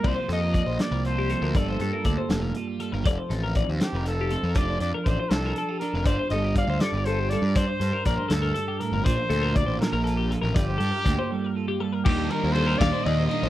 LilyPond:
<<
  \new Staff \with { instrumentName = "Trumpet" } { \time 6/8 \key g \minor \tempo 4. = 80 c''8 ees''4 d''8 c''4 | a'2 r4 | r4. g'8 a'4 | d''8 d''8 c''8 a'4 bes'8 |
c''8 ees''8 f''8 d''8 c''8 d''8 | c''4 bes'8 a'4 bes'8 | c''4 d''8 bes'4 r8 | g'2 r4 |
g'8 bes'8 c''8 d''8 ees''8 ees''8 | }
  \new Staff \with { instrumentName = "Clean electric guitar" } { \time 6/8 \key g \minor d''16 c''16 a'16 bes'16 d''16 c''16 a'16 bes'16 a'16 g'16 a'16 bes'16 | d''16 c''16 a'16 bes'16 d''16 c''16 a'16 bes'16 a'16 g'16 a'16 bes'16 | d''16 c''16 a'16 bes'16 d''16 c''16 a'16 bes'16 a'16 g'16 a'16 bes'16 | d''16 c''16 a'16 bes'16 d''16 c''16 a'16 bes'16 a'16 g'16 a'16 bes'16 |
d''16 c''16 a'16 bes'16 d''16 c''16 a'16 bes'16 a'16 g'16 a'16 bes'16 | d''16 c''16 a'16 bes'16 d''16 c''16 a'16 bes'16 a'16 g'16 a'16 bes'16 | d''16 c''16 a'16 bes'16 d''16 c''16 a'16 bes'16 a'16 g'16 a'16 bes'16 | d''16 c''16 a'16 bes'16 d''16 c''16 a'16 bes'16 a'16 g'16 a'16 bes'16 |
g'16 a'16 bes'16 c''16 a'16 bes'16 f''16 c''16 d''16 c''16 bes'16 c''16 | }
  \new Staff \with { instrumentName = "Clean electric guitar" } { \time 6/8 \key g \minor << { <f bes f' g'>4 bes4 f'4 | f'4 bes4 f'4 | a'4 ees'4 ees'4 | <d' f' a'>4 f'4 d'16 f'8. |
<g d' f' g'>4 d'4 f'4 | g'4 d'2 | <f d' f' bes'>4 d'4 f'4 | f'4 bes4 f'4 |
<g d' f'>8 d'8 f'4 d'16 f'16 d'8 | } \\ { c8 f4 f4 f8 | g,8 g4 g4 g8 | f8 c'4 c'4 c'8 | f8 d'4 d'4 d'8 |
g,8 g4 g4 g8 | g,8 g4. g,8 a,8 | bes,8 f4 f4 f8 | g,8 g4 g4 g8 |
ees4. bes,4. | } >> }
  \new Staff \with { instrumentName = "Overdriven electric guitar" } { \clef bass \time 6/8 \key g \minor r2. | r2. | r2. | r2. |
r2. | r2. | r2. | r2. |
<ees g bes ees'>8 <ees g bes ees'>8 <ees g bes ees'>8 <ees g bes ees'>8 <ees g bes ees'>8 <ees g bes ees'>8 | }
  \new Staff \with { instrumentName = "Picked electric bass" } { \clef bass \time 6/8 \key g \minor c,16 r16 f,8. bes,,16 r16 c,4 d,16 | g,,8 g,16 r16 d,16 r16 f,,8 r8. g,,16 | f,,16 r16 a,,8. ees,16 r16 f,,4 f,16 | f,,8 f,16 r16 a,,16 r16 c,8 r8. f,,16 |
g,,16 r16 g,,8. d,16 r16 g,,4 g,16~ | g,16 r16 g,16 r16 bes,,16 r16 d,8 r8. g,,16 | bes,,16 r16 d,8. a,,16 r16 bes,,4 a,,16 | g,,8 g,16 r16 d,16 r4. r16 |
ees,8 r16 ees,8. ees,16 r16 ees,8 r16 bes,,16 | }
  \new DrumStaff \with { instrumentName = "Drums" } \drummode { \time 6/8 <cymc bd>8 hh8 <hh bd>8 <hh sn>8 hh8 hh8 | <hh bd>8 hh8 <hh bd>8 <hh sn>8 hh8 hh8 | <hh bd>8 hh8 <hh bd>8 <hh sn>8 hh8 hh8 | <hh bd>8 hh8 <hh bd>8 <hh sn>8 hh8 hh8 |
<hh bd>8 hh8 <hh bd>8 <hh sn>8 hh8 hh8 | <hh bd>8 hh8 <hh bd>8 <hh sn>8 hh8 hh8 | <hh bd>8 hh8 <hh bd>8 <hh sn>8 hh8 hh8 | <hh bd>8 hh8 <hh bd>8 r4. |
<cymc bd>8 cymr8 cymr8 <bd cymr sn>8 cymr8 cymr8 | }
>>